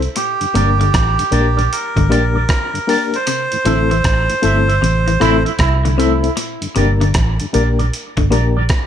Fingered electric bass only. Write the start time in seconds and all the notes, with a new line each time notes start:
0.55 G1
0.94 A1
1.32 A#1
1.97 G1
2.10 A#1
3.66 A1
4.05 A1
4.44 G1
4.82 A1
5.21 A1
5.59 C2
6.76 G1
7.15 A1
7.55 A#1
8.18 G1
8.32 A#1